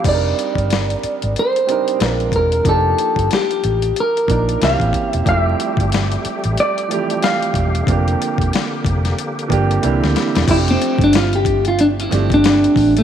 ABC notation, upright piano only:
X:1
M:4/4
L:1/16
Q:"Swing 16ths" 1/4=92
K:F
V:1 name="Upright piano"
[G,CD_E_AB]6- [G,CDEAB] z3 [G,CDEB]2 [_A,CDFB]4 | [F,B,D_EG]6- [F,B,DEG] z3 [F,B,DEB]2 [=E,B,C_D_G=G]4 | [F,A,CE_G=G]6- [F,A,CE_G=G] z3 [E,F,A,CG]6 | [F,B,CDG]6- [F,B,CDG] z3 [F,B,CDG]2 [E,B,CDG]4 |
[F,A,CDG]6- [F,A,CDG] z3 [F,A,CDG]6 |]